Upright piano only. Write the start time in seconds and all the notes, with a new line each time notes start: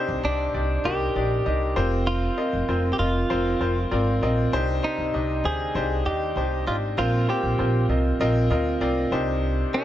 Already playing: C3 D4 D#4 G4 C5
0.23 D4 D#4 G4 D5
0.54 D4 D#4 G4 D5
0.85 D4 D#4 G4 A#4
1.16 D4 D#4 G4 D5
1.46 D4 D#4 G4 D#5
1.76 C4 F4 A#4 C5
2.38 C4 F4 A#4 D#5
2.68 C4 F4 A#4 C5
2.99 C4 F4 A#4 D#5
3.30 C4 F4 A#4 C5
3.60 C4 F4 A#4 C5
3.91 C4 F4 A#4 D5
4.22 C4 F4 A#4 D#5
4.53 C3 D4 D#4 G4 C5
4.83 D4 D#4 G4 C5
5.14 D4 D#4 G4 D#5
5.44 D4 D#4 G4 C5
5.75 D4 D#4 G4 C5
6.06 D4 D#4 G4 D#5
6.37 D4 D#4 G4 C5
6.67 D4 D#4 G4 D#5
6.98 A#2 C4 F4 A#4 C5
7.28 C4 F4 A#4 C5
7.59 C4 F4 A#4 C5
7.90 C4 F4 A#4 D#5
8.21 C4 F4 A#4 D#5
8.50 C4 F4 A#4 D#5
8.81 C4 F4 A#4 D5
9.12 C3 D4 D#4 G4 C5
9.74 D4 D#4 G4 A#4